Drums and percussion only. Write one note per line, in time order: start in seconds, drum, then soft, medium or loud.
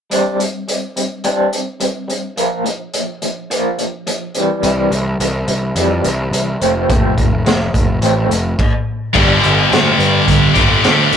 0.11 closed hi-hat medium
0.40 closed hi-hat soft
0.68 closed hi-hat medium
0.97 closed hi-hat medium
1.24 closed hi-hat medium
1.53 closed hi-hat soft
1.80 closed hi-hat medium
2.10 closed hi-hat soft
2.37 closed hi-hat medium
2.66 closed hi-hat soft
2.94 closed hi-hat medium
3.22 closed hi-hat soft
3.51 closed hi-hat medium
3.79 closed hi-hat soft
4.07 closed hi-hat medium
4.35 closed hi-hat soft
4.63 closed hi-hat medium
4.92 closed hi-hat soft
5.20 closed hi-hat medium
5.48 closed hi-hat medium
5.76 closed hi-hat medium
6.04 closed hi-hat medium
6.33 closed hi-hat medium
6.62 closed hi-hat medium
6.90 kick medium
6.90 closed hi-hat medium
7.18 kick medium
7.18 closed hi-hat soft
7.46 snare medium
7.46 closed hi-hat medium
7.74 kick medium
7.74 closed hi-hat medium
8.02 closed hi-hat medium
8.31 closed hi-hat soft
8.59 kick medium
8.59 crash medium
9.15 kick medium
9.15 crash medium
9.43 closed hi-hat medium
9.72 snare medium
9.72 closed hi-hat medium
10.00 closed hi-hat medium
10.28 kick medium
10.28 closed hi-hat medium
10.55 kick medium
10.55 closed hi-hat medium
10.84 snare medium
10.84 closed hi-hat medium
11.13 closed hi-hat medium